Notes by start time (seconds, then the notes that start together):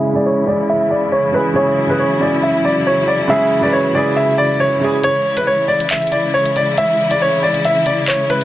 Already playing: C#3 E3 G#3 E4 G#4 E5
0.13 C#3 G#3 E4 D5
0.17 G#4
0.26 C#5
0.45 C#3 G#3 E4 D5
0.49 G#4
0.69 E5
0.91 D5
1.12 C#5
1.32 C#3 G#3 E4 B4
1.36 G#4
1.54 C#3 F#3 G#3 E4 C#5
1.58 G#4
1.87 C#3 G#3 E4 B4
1.91 G#4
1.99 C#5
2.19 C#3 G#3 E4 D5
2.23 G#4
2.43 E5
2.65 D5
2.87 C#5
3.08 D5
3.27 C#3 G#3 E4 E5
3.32 G#4
3.61 C#3 G#3 E4 D5
3.65 B4
3.73 C#5
3.93 C#3 G#3 E4 D5
3.97 G#4
4.16 E5
4.38 D5
4.60 C#5
4.80 C#3 G#3 E4
4.84 G#4
5.04 C#3 E3 G#3 E4 C#5, closed hi-hat
5.37 B4, closed hi-hat
5.47 C#5
5.68 D5
5.80 closed hi-hat
5.90 E5, clap, closed hi-hat
5.96 closed hi-hat
6.02 closed hi-hat
6.07 closed hi-hat
6.12 D5, closed hi-hat
6.34 C#5
6.46 closed hi-hat
6.56 D5, closed hi-hat
6.78 E5, closed hi-hat
7.11 D5, closed hi-hat
7.22 C#5
7.43 D5
7.54 closed hi-hat
7.65 E5, closed hi-hat
7.86 D5, closed hi-hat
8.08 C#5, clap
8.30 B4, closed hi-hat